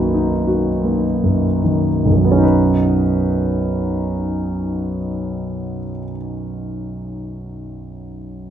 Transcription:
Already playing: B1 F#2 D#3 A#3 D#4 F#4 B4
0.14 D#4
0.47 F#4
0.84 A#3
1.24 F#2
1.64 D#3
2.05 B1 F#2
2.11 F#2
2.17 F#3
2.25 B3
2.32 C#4
2.38 D#4
2.44 B4

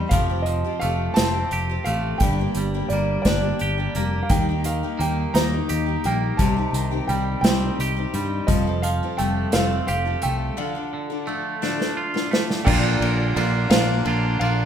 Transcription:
Already playing: D#3 G3 C4 D#4 G4
0.09 F1 F3 A3 C4 F5, kick, closed hi-hat
0.13 F4 G4
0.30 C4 F4 G4
0.42 D#5, closed hi-hat
0.47 F3
0.65 C4 F4 G4
0.80 F1 A3 C4 F4 G4 F5, closed hi-hat
1.14 F1 F3 A3 C4 F4 G4 A5, snare, closed hi-hat
1.34 C4 F4 G4
1.51 F1 G4, closed hi-hat
1.69 C4 F4 G4
1.84 A1 A3 C4 F4 F5, closed hi-hat
1.89 G4
2.18 G1 G2 G5, kick, closed hi-hat
2.22 D3 G3 A#3 D4 G4
2.39 G3 A#3 D4 G4
2.55 G1 G3, closed hi-hat
2.74 G3 A#3 D4 G4
2.89 G1 G3 A#3 D4 D5, closed hi-hat
2.93 G4
3.22 G1 G2 D3 G3 D4 D5, kick, snare, closed hi-hat
3.26 A#3 G4
3.42 G3 A#3 D4 G4
3.59 G1 G4, closed hi-hat
3.78 G3 A#3 D4 G4
3.95 F1 G3 A#3 D4 G4, closed hi-hat
4.23 F5
4.29 D#2 D#3 G3 A#3 D#4 G4 G5, kick, closed hi-hat
4.49 A#3 D#4 G4
4.64 D#3 F5, closed hi-hat
4.83 A#3 D#4 G4
4.99 D#2 G3 A#3 D#4 G4 G5, closed hi-hat
5.34 D#2 D#3 G3 A#3 D#4 G4 A#5, snare, closed hi-hat
5.52 A#3 D#4 G4
5.69 D#2 G4, closed hi-hat
5.86 A#3 D#4 G4
6.04 A#1 G3 A#3 D#4 G4 G5, closed hi-hat
6.37 C2 C3 G3 C4 D#4 G4 A5, kick, closed hi-hat
6.56 C4 D#4 G4
6.73 C2 D#3, closed hi-hat
6.91 C4 D#4 G4
7.08 C2 G3 C4 D#4 G4 G5, closed hi-hat
7.41 C2 C3 G3 C4 D#4 G5, snare, closed hi-hat
7.45 G4
7.60 C4 D#4 G4
7.79 C2 G4, closed hi-hat
7.97 C4 D#4 G4
8.13 G2 G3 C4 D#4 G4, closed hi-hat
8.47 F1 F3 G3 C4 F4 A4 D#5, kick, closed hi-hat
8.67 C4 F4 A4
8.82 F3 F5, closed hi-hat
9.03 C4 F4 A4
9.18 F1 G3 A3 C4 F4 G5, closed hi-hat
9.22 A4
9.52 F1 F3 G3 C4 F4 A4 F5, snare, closed hi-hat
9.70 C4 F4 A4
9.87 F1 G4 F5, closed hi-hat
10.05 C4 F4 A4
10.22 C2 G3 A3 C4 F4 A4 G5, closed hi-hat
10.57 D3 F3 D4 F4 A4 F5
10.75 D4 F4 A4
10.94 D3
11.10 D4 F4 A4
11.27 F3 A3 D4 F4 A4
11.62 D3 F3 D4 F4 A4, snare
11.79 D4 F4 A4, snare
11.97 F4
12.14 D4 F4 A4, snare
12.31 F3 A3 D4 F4 A4, snare
12.51 snare
12.64 A#1 A#2 D3 F3 A#3 D4 F4 A#4 D5 G5, kick, crash
13.01 A#1 A#3 D4 F4, ride
13.35 A#1 D3 F3 A#3 D4 F4 A#4, ride
13.70 A#1 A#2 D3 F3 A#3 D4 F4 A#4 F5, snare, ride
14.05 A#1 D3 A#3 D4 F4, ride
14.39 A#1 F3 A#3 D4 F4 A#4 F5, ride

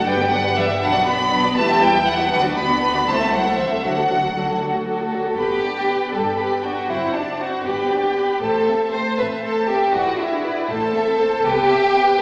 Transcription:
0.05 G1 G3 D4 B4 D5 G5
0.17 B3 G4 B4
0.30 F#3 G3 D4 B4 D5 F#5
0.42 B3 G4 B4
0.54 E3 G3 D4 B4 D5
0.58 E5
0.67 B3 G4 B4
0.80 B1 F#3 D4 B4 F#5
0.93 B3 F#4 D5
1.04 F#3 B3 D4 B4 B5
1.18 B3 F#4 D5
1.30 F#3 D4 B4
1.43 B3 F#4 D5
1.56 E2 G3 A3 E4 B4 A5
1.68 B3 G4 E5
1.82 G3 E4 B4 G5
1.93 B3 G4 E5
2.06 F#3 G3 E4 B4 F#5
2.17 B3 G4 E5
2.31 D2 F#3 B3 D4 F#4 B4 F#5
2.42 D4 F#4 D5
2.56 B3 D4 F#4 B4 B5
2.68 D4 F#4 D5
2.81 B3 D4 F#4 B4
2.94 D4 F#4 D5
3.07 C2 A3 C4 E4 C5 A5
3.20 A3 C4 A4 E5
3.32 F#3 C4 E4 C5 F#5
3.44 A3 C4 A4 E5
3.57 E3 C4 E4 C5 E5
3.70 A3 C4 A4 E5
3.83 D2 F#3 D4 F#4 A4 F#5
3.96 A3 F#4 A4
4.09 F#3 D4 F#4 A4
4.22 A3 F#4 A4
4.35 F#3 D4 F#4 A4
4.48 A3 F#4 A4
4.60 F#3 D4 F#4 A4
4.74 A3 F#4 A4
4.87 F#3 D4 F#4 A4
5.00 A3 F#4 A4
5.12 F#3 D4 F#4 A4
5.25 A3 F#4 A4
5.37 G1 G2 B3 G4 B4 B5
5.64 D4 D5 G5
5.89 B3 B4 B5
6.13 G1 G2 D4 A4 D5 G5
6.38 B3 G4 B4 B5
6.63 D4 F#4 D5 G5
6.90 F#1 F#2 C4 E4 C5 F#5
7.14 D4 D5 A5
7.40 C4 F#4 C5 F#5
7.66 G1 G2 B3 G4 B4 B5
7.91 D4 D5 G5
8.16 B3 B4 B5
8.41 A1 A2 A3 A4 C5 A5
8.68 C4 A4 E5
8.93 A3 C5 A5
9.18 A1 A2 C4 A4 B4 E5
9.43 A3 A4 C5 A5
9.69 C4 G4 A4 E5
9.93 G#1 G#2 E4 F#4 B4 D5
10.18 D4 E4 G#4 E5
10.43 E4 B4 D5
10.69 A1 A2 A3 A4 C5 A5
10.94 C4 A4 E5
11.19 A3 C5 A5
11.45 C2 C3 B3 G4 B4 G5
11.70 C4 C5 E5
11.95 B3 B4 G5

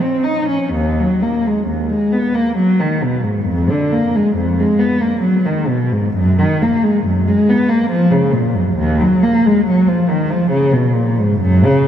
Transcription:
0.01 C4
0.24 D#4
0.49 C#4
0.74 D#2
1.00 F#3
1.22 A#3
1.47 G#3
1.68 D#2
1.90 G#3
2.12 B3
2.34 A#3
2.57 F#3
2.80 D#3
3.03 B2
3.23 G#2
3.46 F2
3.70 D3
3.92 A#3
4.16 G#3
4.36 F2
4.59 G#3
4.79 B3
5.01 A#3
5.21 F#3
5.45 D#3
5.68 B2
5.92 G#2
6.15 F#2
6.39 D#3
6.62 A#3
6.83 G#3
7.05 F#2
7.27 G#3
7.49 B3
7.69 A#3
7.91 F3
8.11 C#3
8.33 A#2
8.55 F#2
8.76 D#2
9.00 F#3
9.23 A#3
9.46 G#3
9.66 F#3
9.88 F3
10.09 D#3
10.30 F3
10.52 C#3
10.72 B2
10.94 A#2
11.19 G#2
11.41 F#2
11.65 C#3

